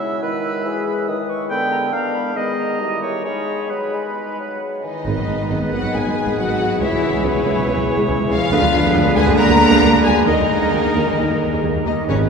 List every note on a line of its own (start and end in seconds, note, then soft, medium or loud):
0.00 0.21 C#3 medium
0.00 0.21 G#3 soft
0.00 0.21 E4 soft
0.00 0.65 E4 medium
0.00 0.22 E5 medium
0.00 1.10 E6 soft
0.22 0.65 D#3 medium
0.22 1.48 G#3 medium
0.22 1.48 E4 medium
0.22 1.07 B4 medium
0.66 1.08 E3 medium
0.66 1.11 G#4 medium
1.08 1.50 D#3 medium
1.08 1.53 B4 medium
1.08 1.31 D#6 medium
1.29 1.49 C#6 medium
1.50 1.93 D3 medium
1.50 1.93 G#3 soft
1.50 1.92 B3 medium
1.50 2.37 A#4 medium
1.50 1.95 G5 medium
1.50 1.71 B5 medium
1.71 1.77 A#5 medium
1.93 2.35 G#3 medium
1.93 2.35 B3 medium
1.93 2.35 D4 medium
1.93 2.38 F5 medium
1.93 2.16 A#5 medium
2.14 2.35 B5 medium
2.35 2.79 D#3 soft
2.35 2.79 G#3 medium
2.35 2.79 B3 medium
2.35 2.82 G#4 medium
2.35 3.02 D#5 medium
2.35 2.56 B5 medium
2.57 3.23 A#5 soft
2.79 3.26 D#3 soft
2.79 3.25 G3 soft
2.79 3.24 E4 soft
2.79 3.24 G4 medium
3.02 3.24 C#5 medium
3.24 3.70 G#3 soft
3.24 3.69 G#3 soft
3.24 3.68 D#4 soft
3.24 4.81 G#4 soft
3.24 3.72 C#5 medium
3.24 4.62 B5 soft
3.70 3.95 F#3 soft
3.70 4.82 G#3 soft
3.70 4.82 D#4 soft
3.70 4.85 B4 soft
3.93 4.39 G#3 soft
4.39 4.83 F#3 soft
4.83 5.69 D#3 soft
4.83 5.06 E3 soft
4.83 5.69 D#4 soft
4.83 5.69 D#5 soft
4.83 5.69 D#5 medium
5.06 5.11 G#1 medium
5.06 6.64 D#3 medium
5.06 5.12 G#3 medium
5.06 6.77 B3 medium
5.06 6.77 D#4 medium
5.06 8.48 G#4 medium
5.06 6.77 B4 medium
5.17 5.22 G#1 soft
5.17 5.23 F#3 soft
5.28 5.33 G#1 soft
5.28 5.34 G#3 soft
5.40 5.44 G#1 medium
5.40 5.45 G#3 medium
5.50 5.55 G#1 soft
5.50 5.56 F#3 soft
5.61 5.66 G#1 soft
5.61 5.66 G#3 soft
5.73 5.77 G#1 medium
5.73 5.95 F#3 medium
5.73 5.78 G#3 medium
5.73 5.95 F#4 medium
5.73 5.94 F#5 medium
5.73 5.97 F#5 medium
5.83 5.88 G#1 soft
5.83 5.88 F#3 soft
5.94 5.99 G#1 medium
5.94 5.99 G#3 medium
5.94 6.38 G#3 medium
5.94 6.39 G#4 medium
5.94 6.37 G#5 medium
5.94 6.39 G#5 medium
6.05 6.10 G#1 soft
6.05 6.11 F#3 soft
6.27 6.32 G#1 medium
6.27 6.32 G#3 medium
6.38 6.42 G#1 soft
6.38 6.43 G#1 soft
6.38 6.81 F#3 medium
6.38 6.43 F#3 soft
6.38 6.81 F#4 medium
6.38 6.80 F#5 medium
6.38 6.81 F#5 medium
6.49 6.54 G#1 soft
6.49 6.55 G#3 soft
6.59 6.64 G#1 medium
6.59 6.66 G#3 medium
6.80 6.85 C#2 medium
6.80 7.23 E3 medium
6.80 8.49 E3 medium
6.80 8.49 G#3 medium
6.80 6.86 G#3 medium
6.80 7.23 E4 medium
6.80 8.52 E4 medium
6.80 8.53 E4 medium
6.80 8.48 C#5 medium
6.80 7.23 E5 medium
6.80 7.26 E5 medium
6.91 6.96 C#2 soft
6.91 6.97 F#3 soft
7.02 7.07 C#2 medium
7.02 7.07 C#2 soft
7.02 7.07 G#3 soft
7.13 7.18 C#2 medium
7.13 7.18 G#3 medium
7.24 7.28 C#2 medium
7.24 8.09 B2 medium
7.24 7.28 F#3 medium
7.24 8.10 B3 medium
7.24 8.09 B4 medium
7.24 8.10 B4 medium
7.34 7.39 C#2 medium
7.34 7.39 G#3 medium
7.45 7.50 C#2 medium
7.45 7.49 G#3 medium
7.55 7.61 C#2 medium
7.55 7.60 F#3 medium
7.66 7.71 C#2 medium
7.66 7.70 G#3 medium
7.76 7.81 C#2 medium
7.76 7.80 F#3 medium
7.98 8.03 C#2 medium
7.98 8.02 G#3 medium
8.09 8.13 C#2 medium
8.09 8.14 C#2 medium
8.09 8.13 F#3 medium
8.20 8.24 C#2 medium
8.20 8.24 G#3 medium
8.30 8.35 C#2 medium
8.30 9.13 F3 medium
8.30 8.35 G#3 medium
8.30 9.13 F4 medium
8.30 9.17 F5 medium
8.30 9.13 F5 loud
8.51 8.55 D2 medium
8.51 8.56 D2 medium
8.51 10.24 D3 medium
8.51 8.57 G#3 medium
8.51 10.24 G#3 medium
8.51 10.24 B3 medium
8.51 10.24 D4 medium
8.51 10.24 G#4 medium
8.51 10.29 B4 medium
8.62 8.67 D2 medium
8.62 8.66 G3 medium
8.72 8.78 D2 medium
8.72 8.77 G#3 medium
8.82 8.89 D2 loud
8.82 8.87 G#3 medium
8.93 8.99 D2 medium
8.93 8.98 G3 medium
9.05 9.10 D2 medium
9.05 9.10 G#3 medium
9.16 9.20 D2 loud
9.16 9.21 D2 loud
9.16 9.20 G#3 loud
9.16 9.38 G#3 loud
9.16 9.38 G#4 loud
9.16 9.24 G#5 loud
9.16 9.38 G#5 loud
9.26 9.32 D2 medium
9.26 9.31 G3 medium
9.37 9.42 D2 loud
9.37 9.42 G#3 loud
9.37 10.05 A#3 loud
9.37 10.03 A#4 loud
9.37 10.03 A#5 loud
9.49 9.53 D2 medium
9.49 9.53 G3 medium
9.71 9.75 D2 medium
9.71 9.76 G#3 medium
9.82 9.86 D2 medium
9.82 9.87 D2 medium
9.82 9.87 G3 medium
9.92 9.98 D2 medium
9.92 9.97 G#3 medium
10.03 10.09 D2 medium
10.03 10.11 D2 medium
10.03 10.27 G#3 medium
10.03 10.09 G#3 medium
10.03 10.27 G#4 medium
10.03 10.25 G#5 medium
10.03 10.27 G#5 loud
10.26 10.31 D#2 medium
10.26 10.33 D#2 medium
10.26 11.60 D#3 medium
10.26 11.16 D#3 medium
10.26 11.02 G#3 medium
10.26 10.32 G#3 medium
10.26 11.85 A#3 medium
10.26 11.61 D#4 medium
10.26 11.02 D#4 medium
10.26 10.68 G#4 medium
10.26 11.18 A#4 medium
10.26 11.60 D#5 medium
10.39 10.44 D#2 soft
10.39 10.44 F#3 medium
10.49 10.54 D#2 medium
10.49 10.55 D#2 medium
10.49 10.56 G#3 medium
10.62 10.67 D#2 medium
10.62 10.67 G#3 medium
10.72 10.77 D#2 medium
10.72 10.78 D#2 medium
10.72 10.78 F#3 medium
10.72 10.96 G#4 medium
10.84 10.90 D#2 soft
10.84 10.89 G#3 soft
10.95 10.99 D#2 medium
10.95 11.01 D#2 medium
10.95 11.00 G#3 medium
10.95 11.40 A#4 medium
11.07 11.12 D#2 soft
11.07 11.11 F#3 soft
11.17 11.22 D#2 medium
11.17 11.23 D#2 medium
11.17 11.85 D#3 medium
11.17 11.22 G3 medium
11.17 11.85 G3 medium
11.17 11.86 D#4 medium
11.17 11.85 A#4 medium
11.30 11.34 D#2 soft
11.30 11.34 E3 soft
11.41 11.87 G#4 medium
11.52 11.56 D#2 medium
11.52 11.57 G3 medium
11.63 11.67 D#2 soft
11.63 11.68 D#2 soft
11.63 11.68 E3 soft
11.75 11.79 D#2 soft
11.75 11.80 G3 medium
11.85 11.90 D#2 medium
11.85 12.08 D#3 medium
11.85 11.91 G3 medium
11.85 11.94 D#4 medium
11.85 12.08 G4 medium
11.85 12.07 D#5 medium
11.85 11.94 D#5 medium
12.08 12.29 G#1 medium
12.08 12.29 G#2 medium
12.08 12.29 C#3 medium
12.08 12.29 D#3 medium
12.08 12.29 G#3 medium
12.08 12.29 B3 medium
12.08 12.17 C#4 medium
12.08 12.29 D#4 medium
12.08 12.29 G#4 medium
12.08 12.29 B4 medium
12.08 12.14 C#5 medium
12.08 12.18 C#5 medium